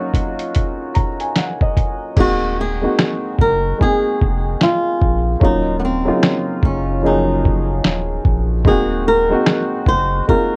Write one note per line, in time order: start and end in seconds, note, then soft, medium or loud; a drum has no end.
0.00 2.19 F#3 medium
0.00 2.17 A#3 medium
0.00 2.19 C#4 medium
0.00 2.18 D#4 medium
0.00 2.19 F4 medium
0.00 2.19 F#4 medium
0.14 kick medium
0.14 closed hi-hat medium
0.39 closed hi-hat soft
0.55 kick medium
0.55 closed hi-hat medium
0.94 1.18 A#5 medium
0.94 kick medium
0.94 closed hi-hat medium
1.20 1.35 G#5 medium
1.20 closed hi-hat soft
1.36 1.60 F#5 medium
1.36 finger snap medium
1.36 snare loud
1.36 closed hi-hat medium
1.61 2.14 D#5 medium
1.61 kick medium
1.77 kick medium
1.77 closed hi-hat medium
2.16 2.86 D#1 loud
2.16 2.75 G#3 medium
2.16 2.76 A#3 medium
2.16 2.76 C4 medium
2.16 2.76 D#4 medium
2.16 2.77 F#4 medium
2.16 kick loud
2.16 crash medium
2.20 2.60 F#4 loud
2.61 3.41 G#4 medium
2.81 3.71 G#3 medium
2.81 3.72 A#3 medium
2.81 3.72 C4 medium
2.81 3.72 D#4 medium
2.81 3.73 F#4 medium
2.99 finger snap medium
2.99 snare loud
3.39 3.73 F#1 medium
3.39 3.78 A#4 loud
3.39 kick medium
3.78 5.29 G#3 medium
3.78 5.30 A#3 medium
3.78 5.30 C4 medium
3.78 5.31 D#4 medium
3.78 5.31 G#4 medium
3.78 kick medium
3.82 4.63 G#4 medium
4.21 4.56 F1 medium
4.21 kick medium
4.61 5.45 F4 medium
4.61 finger snap medium
4.61 snare loud
5.01 5.36 A#1 medium
5.01 kick medium
5.40 6.11 D#1 loud
5.40 5.99 F#3 medium
5.40 6.00 A#3 medium
5.40 6.00 C#4 medium
5.40 6.01 D#4 medium
5.40 6.01 F4 medium
5.40 kick loud
5.45 5.79 D#4 medium
5.80 5.83 B3 medium
5.85 6.65 C4 medium
6.05 6.96 C#3 medium
6.05 6.95 F#3 medium
6.05 6.96 A#3 medium
6.05 6.97 D#4 medium
6.05 6.97 F4 medium
6.23 finger snap medium
6.23 snare loud
6.63 7.81 F#1 medium
6.63 7.05 C#4 medium
6.63 kick medium
7.02 7.10 F3 medium
7.02 8.54 A#3 medium
7.02 8.55 C#4 medium
7.02 8.55 D#4 medium
7.02 8.55 G#4 medium
7.06 8.57 F#3 medium
7.06 8.22 D#4 medium
7.45 kick medium
7.84 8.19 D#1 medium
7.84 finger snap medium
7.84 snare loud
8.25 8.67 A#1 medium
8.25 kick medium
8.65 9.35 D#1 loud
8.65 9.24 G#3 medium
8.65 9.24 A#3 medium
8.65 9.25 C4 medium
8.65 9.25 D#4 medium
8.65 9.26 F#4 medium
8.65 9.07 G#4 loud
8.65 kick loud
9.08 9.88 A#4 loud
9.29 10.20 G#3 medium
9.29 10.20 A#3 medium
9.29 10.20 C4 medium
9.29 10.21 D#4 medium
9.29 10.21 F#4 medium
9.46 finger snap medium
9.46 snare loud
9.86 10.22 F#1 medium
9.86 10.28 C5 loud
9.86 kick medium
10.27 10.56 G#3 medium
10.27 10.56 A#3 medium
10.27 10.56 C4 medium
10.27 10.56 D#4 medium
10.27 10.56 F4 medium
10.27 10.56 A#4 loud
10.27 kick medium